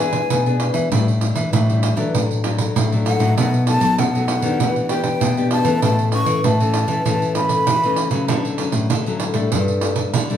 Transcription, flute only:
Already playing: G#5
3.06 F#5
3.38 F#5
3.67 A5
3.99 F#5
4.90 G5
5.52 A5
5.84 A5
6.13 C#6
6.45 A5
7.36 B5

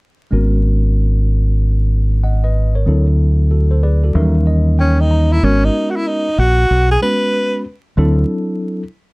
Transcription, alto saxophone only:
4.80 C#4
5.00 D#4
5.32 E4
5.44 C#4
5.64 D#4
5.91 F#4
5.96 E4
6.07 D#4
6.39 F#4
6.91 G#4
7.02 B4

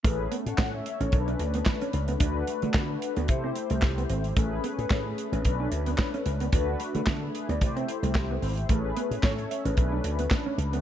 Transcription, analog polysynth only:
0.03 A3 C#4 G#4 B4
0.47 F#5 A5
0.59 F#5
0.74 C#5 E5
1.01 A4 C#5
1.12 A3 C#4 D4 A#4
1.20 B4
2.20 A3 D4 F#4 B4
3.28 A3 E4 G4 C5
4.36 A3 C#4 G#4 B4
5.45 A3 C#4 D4 B4
6.52 A3 D4 F#4 B4
7.07 F#4 A4
7.23 G#4 B4
7.50 B4 D5
7.61 A3 E4 G4 C5
8.69 A3 C#4 G#4 B4
9.24 A4 C#5
9.50 C#5 E5
9.65 G#4 B4
9.76 A3 C#4 D4 B4

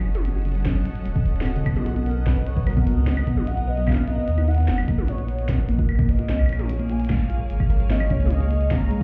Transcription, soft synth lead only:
2.06 A#4
2.26 B4
2.46 C#5
2.67 A#4
3.07 D#5
3.47 F#5
3.68 D#5
3.88 F5
4.08 D#5
4.48 F#5
5.08 C#5
5.49 A#4
6.09 D#5
6.49 C#5
6.90 G#5
7.10 F5
7.90 D#5
8.11 C#5
8.31 D#5
8.71 A#5

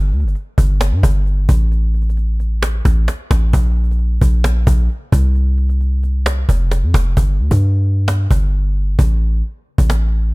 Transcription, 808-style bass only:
Already playing: G1
0.12 D2
0.24 G1
0.58 G1
0.92 G2
1.03 G1
1.49 A1
2.85 A1
3.31 A1
3.53 A#1
4.21 A#1
4.67 A#1
5.12 C2
6.49 F1
6.83 F2
6.94 F1
7.17 G1
7.40 D2
7.51 G2
8.31 G1
8.99 A1
9.78 A1

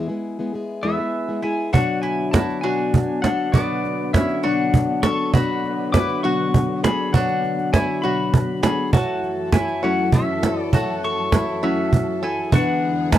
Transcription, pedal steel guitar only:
0.83 E5
1.44 G#5
1.73 F#5
2.02 G#5
2.31 A5
2.61 G#5
3.22 F#5
3.52 D5
4.13 E5
4.44 F#5
5.03 C#6
5.34 B5
5.92 D6
6.23 C#6
6.84 B5
7.13 F#5
7.73 G#5
8.02 B5
8.63 B5
8.93 A5
9.54 G#5
9.84 F#5
10.13 E5
10.60 D5
10.73 A5
11.04 C#6
11.64 E5
12.24 G#5
12.55 F#5
13.13 G#5

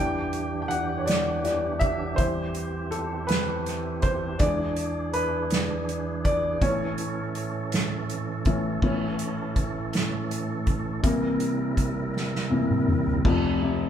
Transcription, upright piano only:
Already playing: E3 G3 D4 G5
0.62 G5
0.68 F#5
0.98 C#5
1.06 D5
1.43 E3 G3 D4
1.79 E5
2.16 E3 G3 E4 C5
2.91 A4
3.27 B4
4.03 C5
4.39 E3 G#3 D4 D5
5.13 B4
6.24 D5
6.61 A2 E3 C#4 C#5
8.46 A2 E3 C#4
8.83 A2 E3 C#4
11.03 C3 E3 A#3
12.50 C3 E3 A#3
13.25 F1 F2
13.63 C3

